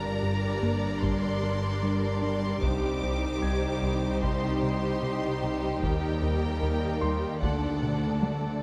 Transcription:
Already playing: G1 G2 G3 D4 G4 A#4 D5 A#5
0.23 G2 G4
0.63 G2 A#3
1.02 G2 G3 C6, taiko
1.44 G3
1.83 G3 D4
2.22 G3 D4 C6
2.62 C2 C3 D#4 G4 C5 D6, taiko
3.03 C2 C4
3.42 C2 C4 G#6
3.83 C2 D#3
4.22 C2 C3 C6, taiko
4.63 C3
5.03 C3 G3
5.43 C3 G3
5.83 D#2 D#3 G3 A#3 G4 A#4 G5, taiko
6.23 D#2 D#4
6.63 D#2 D#4
7.01 D#2 G3 C6
7.43 D2 D3 A3 D4 A4 D5 F#5, taiko
7.83 D3, taiko mid
8.21 D3 A3 A5, taiko high

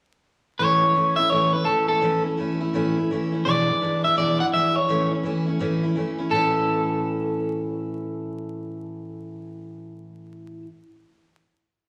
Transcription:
0.59 A2 E3 A3 C#4 E4 C#5
0.81 A3 C#4 E4
0.94 E3 A3 C#4 E4
1.16 A3 C#4 E4 E5
1.30 A2 E3 A3 C#4 E4 C#5
1.53 A3 C#4 E4 B4
1.65 E3 A3 C#4 E4 A4
1.88 A3 C#4 E4 A4
2.01 A2 E3 A3 C#4 E4
2.24 A3 C#4 E4
2.37 E3 A3 C#4 E4
2.60 A3 C#4 E4
2.73 A2 E3 A3 C#4 E4
2.97 A3 C#4 E4
3.11 E3 A3 C#4 E4
3.32 A3 C#4 E4
3.45 E2 B2 E3 G#3 D4 E4 D5
3.68 E3 G#3 D4 E4
3.81 E3 G#3 D4 E4
4.04 E3 G#3 D4 E4 E5
4.16 E2 B2 E3 G#3 D4 E4 D5
4.40 E3 G#3 D4 E4 F#5
4.53 E3 G#3 D4 E4 E5
4.75 E3 G#3 D4 E4 C#5
4.88 A2 E3 A3 C#4 E4
5.11 A3 C#4 E4
5.23 E3 A3 C#4 E4
5.46 A3 C#4 E4
5.59 A2 E3 A3 C#4 E4
5.83 A3 C#4 E4
5.95 E3 A3 C#4 E4
6.18 A3 C#4 E4
6.30 A2 E3 A3 A4
6.35 C#4 E4

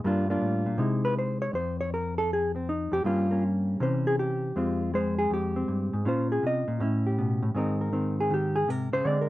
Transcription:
0.04 G2 G3 A#3 D4 F4
0.30 A#3 D4 F4
0.42 A2
0.66 A#2
0.78 C3 G#3 D#4 E4
1.05 B4
1.19 C5
1.42 C#5
1.53 F2 C5
1.81 C#5
1.94 A#4
2.18 A4
2.33 G#4
2.56 C4
2.69 D#4
2.92 F2 G4
3.04 G2 G3 A#3 C#4 F4
3.31 A#3 C#4
3.80 C3 E3 C#4 C5
4.07 G#4
4.19 G4
4.56 F2 G#3 C4 F4
4.94 G#3 C5
5.19 G#4
5.30 F2 G4
5.56 C4
5.68 G2
5.93 G#2
6.05 A#2 C#4 F4 C5
6.32 G#4
6.43 C3 D#5
6.68 A#2
6.80 A2 C#4 E4
7.07 G4
7.18 B2
7.43 A2
7.55 G#2 D#3 C4 D#4 A#4
7.81 A#4
7.93 D#3 C4
8.20 G#4
8.30 D#3 G4
8.56 G#4
8.68 C3 A#4
8.93 C#3 C5
9.05 D3 G#3 C4 D5
9.21 A#4

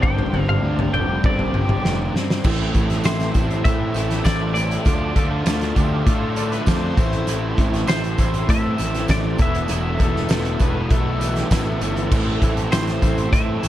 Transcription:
Already playing: G2 C3 D3 G3 C4 D4 G4
0.03 G1 G2 G5, kick, floor tom
0.19 floor tom
0.33 G1 C4, floor tom
0.49 F5, mid tom
0.63 D2 G2 D3 G3 C4 D4 G4
0.79 floor tom
0.93 F1 G3 G5, floor tom
1.24 G1 C4 D5, kick, floor tom
1.39 floor tom
1.53 G1 G4, floor tom
1.69 floor tom, mid tom
1.84 F1 D4, snare
2.14 G2 C4, snare
2.30 snare
2.44 A1 A2 E3 A3 C4 E4 A4 C5 A5, kick, crash, tambourine
2.74 A1 A2 E3 A3 C4 E4, kick, closed hi-hat, tambourine
2.90 snare, closed hi-hat
3.04 A1 A2 E3 A3 E4 C5, snare, closed hi-hat, tambourine
3.08 C4
3.20 snare, closed hi-hat
3.34 A1 A2 E3 A3 C4 E4, kick, closed hi-hat, tambourine
3.50 closed hi-hat
3.64 A2 E3 A3 C4 E4 E5, kick, closed hi-hat
3.94 A1 A2 E3 A3 C4 E4, closed hi-hat, tambourine
4.10 snare, closed hi-hat
4.25 A1 A2 E3 A3 C4 E4 D5, kick, snare, closed hi-hat, tambourine
4.54 A2 E3 A3 C4 D5, closed hi-hat, tambourine
4.58 E4
4.71 closed hi-hat
4.84 D2 D3 A3 D4 F4 A4 D5, kick, closed hi-hat, tambourine
4.88 F4
5.16 D2 D3 A3 D4 F4 A4, kick, closed hi-hat, tambourine
5.31 F4
5.46 D2 D3 A3 D4 F4, snare, closed hi-hat, tambourine
5.61 snare, closed hi-hat
5.76 D2 D3 A3 D4 F4 G4, kick, closed hi-hat, tambourine
6.06 A2 D3 A3 D4 F4 A4, kick, closed hi-hat
6.36 D3 A3 D4 F4, closed hi-hat, tambourine
6.51 B4, closed hi-hat
6.66 F2 D3 A3 D4 F4 C5, kick, snare, closed hi-hat, tambourine
6.97 A1 A2 E3 A3 C4 E4 C5, kick, closed hi-hat, tambourine
7.13 closed hi-hat
7.27 A1 A2 E3 A3 C4 E4, closed hi-hat, tambourine
7.57 A1 A2 E3 A3 C4 E4, kick, closed hi-hat, tambourine
7.74 snare, closed hi-hat
7.87 A1 A2 E3 A3 C4 E4 C5, snare, closed hi-hat, tambourine
8.04 closed hi-hat
8.18 A1 A2 E3 A3 C4 E4, kick, closed hi-hat, tambourine
8.34 closed hi-hat
8.49 A2 E3 A3 C4 E4 E5, kick, closed hi-hat
8.78 A1 A2 E3 A3 C4 E4, closed hi-hat, tambourine
8.94 snare, closed hi-hat
9.08 A1 A2 E3 A3 C4 E4 D5, kick, snare, closed hi-hat, tambourine
9.38 E1 E2 B2 E3 A3 B3 E4 B4 E5, kick, closed hi-hat, tambourine
9.43 E4
9.55 closed hi-hat
9.68 E1 E2 B2 E3 A3, closed hi-hat, tambourine
9.72 B3 E4
9.99 E1 E2 B2 E3 A3 B3 E4 A4, kick, closed hi-hat, tambourine
10.16 snare
10.29 E1 E2 B2 E3 A3 B3 E4, snare, closed hi-hat, tambourine
10.45 closed hi-hat
10.59 E1 E2 B2 E3 A3 B3 E4 B4, kick, closed hi-hat, tambourine
10.90 B1 E2 B2 E3 A3 B3 E4 A4, kick, closed hi-hat, tambourine
11.20 E2 B2 E3 A3 B3 E4, closed hi-hat, tambourine
11.36 G4, snare, closed hi-hat
11.50 A1 E2 B2 E3 A3 B3 E4 A4, kick, snare, closed hi-hat, tambourine
11.80 G1 E2 B2 E3 A3 B3 E4, closed hi-hat, tambourine
11.96 closed hi-hat
12.11 A1 A2 E3 A3 C4 E4 C5, kick, crash, tambourine
12.41 A1 A2 E3 A3 C4 E4, kick, closed hi-hat, tambourine
12.57 closed hi-hat
12.70 A1 A2 E3 A3 C4 E4 C5, snare, closed hi-hat, tambourine
12.87 snare, closed hi-hat
13.01 A1 A2 E3 A3 C4 E4, kick, closed hi-hat, tambourine
13.18 closed hi-hat
13.32 A2 E3 A3 C4 E4 E5, kick, closed hi-hat
13.62 A1 A2 E3 A3 C4 E4, closed hi-hat, tambourine

